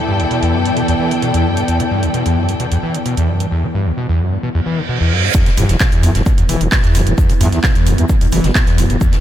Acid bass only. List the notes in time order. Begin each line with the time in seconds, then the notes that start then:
0.08 G2
0.20 D2
0.31 B2
0.43 E2
0.54 F#2
0.66 G2
0.77 B2
0.88 E2
1.00 E3
1.11 D3
1.22 B2
1.34 E2
1.45 F#2
1.57 G2
1.68 E2
1.80 E3
1.91 G2
2.03 D2
2.14 B2
2.26 E2
2.37 F#2
2.49 G2
2.60 B2
2.72 E2
2.83 E3
2.94 D3
3.06 B2
3.17 E2
3.29 F#2
3.40 G2
3.51 E2
3.63 E3
3.74 G2
3.86 D2
3.97 B2
4.09 E2
4.20 F#2
4.32 G2
4.43 B2
4.55 E2
4.66 E3
4.78 D3
4.89 B2
5.01 E2
5.12 F#2
5.24 G2
5.35 E2
5.46 E3
5.58 G2
5.69 D2
5.80 B2
5.92 E2
6.03 F#2
6.15 G2
6.26 B2
6.38 E2
6.49 E3
6.61 D3
6.72 B2
6.84 E2
6.95 F#2
7.07 G2
7.18 E2
7.30 E3
7.41 G2
7.52 D2
7.64 B2
7.75 E2
7.87 F#2
7.98 G2
8.09 B2
8.21 E2
8.32 E3
8.44 D3
8.55 B2
8.67 E2
8.78 F#2
8.90 G2
9.01 E2
9.13 E3